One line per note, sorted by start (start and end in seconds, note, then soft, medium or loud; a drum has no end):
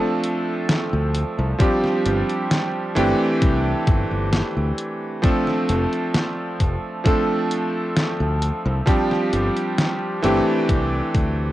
0.00 1.51 F3 medium
0.00 1.51 A3 medium
0.00 1.51 C4 medium
0.00 1.52 D4 medium
0.00 1.52 A4 medium
0.24 closed hi-hat medium
0.69 snare loud
0.69 closed hi-hat medium
0.93 1.23 D2 medium
1.15 closed hi-hat medium
1.39 1.53 C2 loud
1.58 2.87 F3 medium
1.58 2.87 G3 medium
1.58 2.88 C4 medium
1.58 2.88 D4 medium
1.58 2.89 G4 medium
1.58 kick loud
1.58 closed hi-hat medium
1.84 snare soft
2.06 2.21 G1 loud
2.06 closed hi-hat medium
2.29 closed hi-hat soft
2.51 snare loud
2.51 closed hi-hat medium
2.95 3.12 G1 loud
2.95 5.14 E3 medium
2.95 5.15 A3 medium
2.95 5.15 C4 medium
2.95 5.15 D4 medium
2.95 5.16 G4 loud
2.95 closed hi-hat medium
3.42 3.73 C2 loud
3.42 kick loud
3.42 closed hi-hat medium
3.87 4.03 G1 loud
3.87 kick loud
3.87 closed hi-hat medium
4.11 4.41 G1 medium
4.33 snare loud
4.33 closed hi-hat medium
4.57 4.71 D2 medium
4.78 closed hi-hat medium
5.22 6.96 F3 medium
5.22 6.96 A3 medium
5.22 6.97 C4 medium
5.22 6.97 D4 medium
5.22 6.97 A4 medium
5.22 kick loud
5.22 closed hi-hat medium
5.47 snare soft
5.69 5.85 F1 loud
5.69 closed hi-hat medium
5.93 closed hi-hat soft
6.14 snare loud
6.14 closed hi-hat medium
6.60 6.76 F1 medium
6.60 kick medium
6.60 closed hi-hat medium
7.04 8.78 F3 medium
7.04 8.78 A3 medium
7.04 8.79 C4 medium
7.04 8.79 D4 medium
7.04 8.79 A4 medium
7.04 kick loud
7.04 closed hi-hat medium
7.51 closed hi-hat medium
7.96 snare loud
7.96 closed hi-hat medium
8.20 8.50 D2 medium
8.42 closed hi-hat medium
8.66 8.80 C2 loud
8.86 10.14 F3 medium
8.86 10.15 G3 medium
8.86 10.15 C4 medium
8.86 10.15 D4 medium
8.86 10.16 G4 medium
8.86 kick loud
8.86 closed hi-hat medium
9.11 snare soft
9.33 9.49 G1 loud
9.33 closed hi-hat medium
9.57 closed hi-hat soft
9.78 snare loud
9.78 closed hi-hat medium
10.22 10.40 G1 medium
10.22 11.52 E3 loud
10.22 11.52 A3 medium
10.22 11.52 C4 medium
10.22 11.52 D4 medium
10.22 11.52 G4 loud
10.22 closed hi-hat medium
10.69 11.00 C2 loud
10.69 kick loud
10.69 closed hi-hat medium
11.14 11.52 D2 loud
11.14 kick loud
11.14 closed hi-hat medium